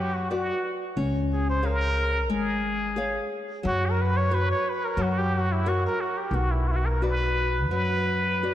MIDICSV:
0, 0, Header, 1, 4, 480
1, 0, Start_track
1, 0, Key_signature, 2, "minor"
1, 0, Tempo, 668896
1, 696, Time_signature, 4, 2, 24, 8
1, 4535, Tempo, 692841
1, 5495, Tempo, 731707
1, 6043, End_track
2, 0, Start_track
2, 0, Title_t, "Nylon-string guitar"
2, 0, Program_c, 0, 24
2, 0, Note_on_c, 0, 54, 59
2, 197, Note_off_c, 0, 54, 0
2, 220, Note_on_c, 0, 66, 49
2, 221, Note_on_c, 0, 71, 41
2, 223, Note_on_c, 0, 74, 54
2, 602, Note_off_c, 0, 66, 0
2, 602, Note_off_c, 0, 71, 0
2, 604, Note_off_c, 0, 74, 0
2, 695, Note_on_c, 0, 61, 60
2, 1158, Note_off_c, 0, 61, 0
2, 1166, Note_on_c, 0, 68, 48
2, 1169, Note_on_c, 0, 73, 41
2, 1171, Note_on_c, 0, 77, 54
2, 1552, Note_off_c, 0, 68, 0
2, 1553, Note_off_c, 0, 73, 0
2, 1555, Note_off_c, 0, 77, 0
2, 1647, Note_on_c, 0, 56, 72
2, 2115, Note_off_c, 0, 56, 0
2, 2125, Note_on_c, 0, 68, 52
2, 2132, Note_on_c, 0, 73, 51
2, 2135, Note_on_c, 0, 77, 61
2, 2511, Note_off_c, 0, 68, 0
2, 2515, Note_off_c, 0, 73, 0
2, 2516, Note_off_c, 0, 77, 0
2, 2607, Note_on_c, 0, 54, 63
2, 3072, Note_off_c, 0, 54, 0
2, 3093, Note_on_c, 0, 66, 49
2, 3094, Note_on_c, 0, 71, 45
2, 3096, Note_on_c, 0, 73, 59
2, 3474, Note_off_c, 0, 66, 0
2, 3474, Note_off_c, 0, 71, 0
2, 3476, Note_off_c, 0, 73, 0
2, 3572, Note_on_c, 0, 54, 69
2, 4041, Note_off_c, 0, 54, 0
2, 4062, Note_on_c, 0, 66, 50
2, 4063, Note_on_c, 0, 70, 44
2, 4063, Note_on_c, 0, 73, 59
2, 4445, Note_off_c, 0, 70, 0
2, 4447, Note_off_c, 0, 66, 0
2, 4447, Note_off_c, 0, 73, 0
2, 4545, Note_on_c, 0, 59, 56
2, 5003, Note_off_c, 0, 59, 0
2, 5020, Note_on_c, 0, 66, 44
2, 5024, Note_on_c, 0, 71, 39
2, 5027, Note_on_c, 0, 74, 53
2, 5405, Note_off_c, 0, 66, 0
2, 5406, Note_off_c, 0, 71, 0
2, 5406, Note_off_c, 0, 74, 0
2, 5498, Note_on_c, 0, 54, 56
2, 5961, Note_off_c, 0, 54, 0
2, 5970, Note_on_c, 0, 66, 44
2, 5972, Note_on_c, 0, 71, 40
2, 5977, Note_on_c, 0, 74, 50
2, 6043, Note_off_c, 0, 66, 0
2, 6043, Note_off_c, 0, 71, 0
2, 6043, Note_off_c, 0, 74, 0
2, 6043, End_track
3, 0, Start_track
3, 0, Title_t, "Muted trumpet"
3, 0, Program_c, 1, 59
3, 0, Note_on_c, 1, 67, 84
3, 100, Note_on_c, 1, 66, 75
3, 110, Note_off_c, 1, 67, 0
3, 218, Note_off_c, 1, 66, 0
3, 224, Note_on_c, 1, 66, 65
3, 555, Note_off_c, 1, 66, 0
3, 955, Note_on_c, 1, 68, 82
3, 1057, Note_off_c, 1, 68, 0
3, 1073, Note_on_c, 1, 72, 92
3, 1189, Note_on_c, 1, 70, 92
3, 1200, Note_off_c, 1, 72, 0
3, 1654, Note_on_c, 1, 68, 78
3, 1665, Note_off_c, 1, 70, 0
3, 2372, Note_off_c, 1, 68, 0
3, 2639, Note_on_c, 1, 66, 106
3, 2770, Note_on_c, 1, 70, 91
3, 2780, Note_off_c, 1, 66, 0
3, 2881, Note_on_c, 1, 71, 106
3, 2892, Note_off_c, 1, 70, 0
3, 2992, Note_on_c, 1, 73, 100
3, 3003, Note_off_c, 1, 71, 0
3, 3117, Note_on_c, 1, 71, 101
3, 3128, Note_off_c, 1, 73, 0
3, 3221, Note_off_c, 1, 71, 0
3, 3237, Note_on_c, 1, 73, 99
3, 3368, Note_on_c, 1, 71, 104
3, 3379, Note_off_c, 1, 73, 0
3, 3479, Note_on_c, 1, 70, 91
3, 3490, Note_off_c, 1, 71, 0
3, 3604, Note_on_c, 1, 66, 85
3, 3615, Note_off_c, 1, 70, 0
3, 3719, Note_on_c, 1, 67, 97
3, 3730, Note_off_c, 1, 66, 0
3, 3836, Note_on_c, 1, 66, 90
3, 3847, Note_off_c, 1, 67, 0
3, 3962, Note_on_c, 1, 64, 80
3, 3972, Note_off_c, 1, 66, 0
3, 4081, Note_on_c, 1, 66, 86
3, 4091, Note_off_c, 1, 64, 0
3, 4188, Note_off_c, 1, 66, 0
3, 4209, Note_on_c, 1, 70, 88
3, 4313, Note_on_c, 1, 66, 77
3, 4323, Note_off_c, 1, 70, 0
3, 4430, Note_on_c, 1, 67, 92
3, 4441, Note_off_c, 1, 66, 0
3, 4556, Note_on_c, 1, 66, 82
3, 4567, Note_off_c, 1, 67, 0
3, 4668, Note_on_c, 1, 64, 68
3, 4679, Note_off_c, 1, 66, 0
3, 4783, Note_on_c, 1, 66, 81
3, 4794, Note_off_c, 1, 64, 0
3, 4808, Note_on_c, 1, 64, 67
3, 4818, Note_off_c, 1, 66, 0
3, 4840, Note_on_c, 1, 66, 80
3, 4851, Note_off_c, 1, 64, 0
3, 4908, Note_on_c, 1, 70, 72
3, 4918, Note_off_c, 1, 66, 0
3, 5029, Note_on_c, 1, 71, 88
3, 5039, Note_off_c, 1, 70, 0
3, 5498, Note_off_c, 1, 71, 0
3, 5502, Note_on_c, 1, 71, 80
3, 6043, Note_off_c, 1, 71, 0
3, 6043, End_track
4, 0, Start_track
4, 0, Title_t, "Upright bass"
4, 0, Program_c, 2, 32
4, 0, Note_on_c, 2, 42, 95
4, 355, Note_off_c, 2, 42, 0
4, 693, Note_on_c, 2, 37, 83
4, 1648, Note_off_c, 2, 37, 0
4, 1648, Note_on_c, 2, 32, 104
4, 2273, Note_off_c, 2, 32, 0
4, 2619, Note_on_c, 2, 42, 100
4, 3238, Note_off_c, 2, 42, 0
4, 3566, Note_on_c, 2, 42, 94
4, 4198, Note_off_c, 2, 42, 0
4, 4528, Note_on_c, 2, 35, 84
4, 5491, Note_off_c, 2, 35, 0
4, 5491, Note_on_c, 2, 42, 86
4, 6043, Note_off_c, 2, 42, 0
4, 6043, End_track
0, 0, End_of_file